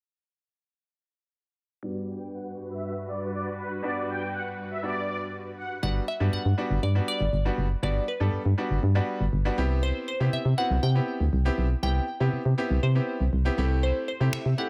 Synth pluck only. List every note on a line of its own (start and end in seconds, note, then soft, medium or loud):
5.83 5.94 F#5 loud
6.08 6.34 E5 loud
6.33 6.85 F#5 loud
6.83 7.06 D5 medium
7.08 7.79 D5 loud
7.83 8.09 D5 medium
8.08 9.54 B4 medium
9.83 10.07 C5 medium
10.08 10.31 C5 medium
10.33 10.56 E5 loud
10.58 10.81 F#5 loud
10.83 11.82 G5 loud
11.83 12.79 G5 loud
12.83 13.54 C5 medium
13.83 14.07 C5 medium
14.08 14.34 C5 medium
14.33 14.59 E5 medium
14.58 14.69 F#5 medium